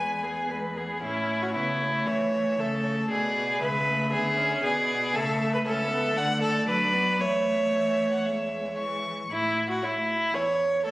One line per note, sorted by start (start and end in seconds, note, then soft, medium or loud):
0.00 0.44 E2 soft
0.00 0.25 G#3 soft
0.00 0.25 B4 soft
0.00 0.50 G#5 medium
0.24 0.52 B3 soft
0.24 0.52 G#4 soft
0.49 0.97 E2 soft
0.49 0.79 G#3 soft
0.49 0.78 B4 soft
0.77 1.02 B3 soft
0.77 1.03 G#4 soft
1.02 1.56 A2 soft
1.02 1.57 C#4 soft
1.02 1.44 E4 soft
1.02 2.09 C#5 soft
1.42 1.54 F#4 soft
1.55 2.06 C#3 soft
1.55 1.83 B3 soft
1.55 2.08 E4 soft
1.81 2.58 A3 soft
2.06 2.59 E3 soft
2.06 2.61 C#5 soft
2.06 2.58 E5 soft
2.58 3.08 C#3 soft
2.58 3.12 A3 soft
2.58 3.10 A4 medium
2.58 2.66 E5 soft
2.84 2.92 C#5 soft
3.09 3.60 B2 soft
3.09 3.61 B3 soft
3.09 3.61 G#4 medium
3.09 3.62 D5 soft
3.60 4.13 C#3 soft
3.60 3.86 G#3 soft
3.60 4.11 B4 medium
3.60 4.65 E5 soft
3.87 4.13 A3 soft
4.11 4.61 D3 soft
4.11 4.39 B3 soft
4.11 4.62 G#4 medium
4.37 4.65 C#4 medium
4.61 5.14 B2 medium
4.61 5.16 B3 soft
4.61 5.17 G#4 medium
4.61 5.16 D5 soft
5.13 5.63 C#3 soft
5.13 5.66 A3 soft
5.13 5.53 A4 medium
5.13 5.63 E5 soft
5.54 5.58 B4 medium
5.64 6.14 C#2 medium
5.64 5.90 C#4 medium
5.64 6.19 A4 medium
5.64 6.18 E5 soft
5.90 6.15 B3 medium
6.15 6.66 D3 soft
6.15 6.68 A3 soft
6.15 6.68 D5 medium
6.15 6.42 F#5 medium
6.42 6.67 A4 medium
6.67 7.20 F#3 medium
6.67 6.95 D4 soft
6.67 7.22 B4 medium
6.67 7.22 D5 soft
6.93 7.21 B3 soft
7.19 7.74 E2 soft
7.19 8.27 A3 soft
7.19 8.78 C#5 medium
7.19 7.68 E5 soft
7.72 8.24 E3 soft
7.72 8.10 E5 soft
8.12 8.26 F#5 soft
8.24 8.76 E2 soft
8.24 9.10 G#3 soft
8.24 8.77 E5 soft
8.77 9.28 E3 soft
8.77 9.29 C#6 soft
9.29 9.72 A2 soft
9.29 9.67 E4 medium
9.70 9.85 F#4 soft
9.82 9.90 A3 soft
9.82 10.36 E4 medium
9.82 9.90 C#5 soft
10.32 10.75 E2 soft
10.32 10.85 C#5 medium
10.84 10.91 A3 soft
10.84 10.91 A4 medium
10.84 10.91 C#5 soft